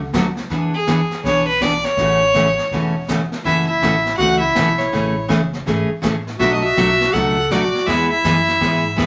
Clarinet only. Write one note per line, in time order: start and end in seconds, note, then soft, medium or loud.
3.45 3.67 E4 medium
3.69 4.16 E4 medium
4.17 4.39 F#4 medium
4.40 4.78 E4 medium
4.78 5.29 E4 medium
6.39 6.53 F#4 medium
6.56 6.63 F#4 medium
6.63 7.15 F#4 medium
7.13 7.53 A4 medium
7.52 7.90 F#4 medium
7.89 8.11 E4 medium
8.12 9.06 E4 medium